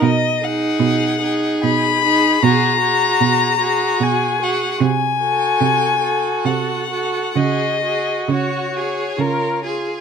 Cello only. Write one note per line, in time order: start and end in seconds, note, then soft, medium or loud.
0.02 0.69 B2 medium
0.80 1.51 B2 medium
1.64 2.31 B2 medium
2.43 3.09 B2 medium
3.21 3.89 B2 medium
4.00 4.69 B2 medium
4.81 5.49 C3 medium
5.61 6.32 C3 medium
6.45 7.23 C3 medium
7.36 8.16 C#3 medium
8.28 9.06 C#3 medium
9.19 9.95 C#3 soft